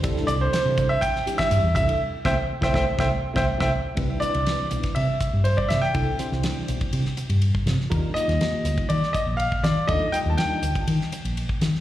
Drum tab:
RD |x-x-x-x-x-x-x-xx|----------------|x-xxx-xxx-x-x-x-|x-x-x-xxx-xxx-x-|
HH |p-p-p-p-p-p-p-p-|----------------|--p---p---p---p-|--p---p---p---p-|
SD |-o--o----o-o----|--o--oo-o--o-o--|----o--o------oo|--ooo----o----oo|
BD |o-----o-o--o--o-|--o--oo-o--o-o--|o------o--o--o--|o------o-----o--|

RD |x-xxx-xxx-x-x-x-|x-x-x-xxx-xxx-x-|
HH |--p---p---p---p-|--p---p---p---p-|
SD |---oo----o----o-|----o----o----oo|
BD |o------o--o--o--|o------o-----o--|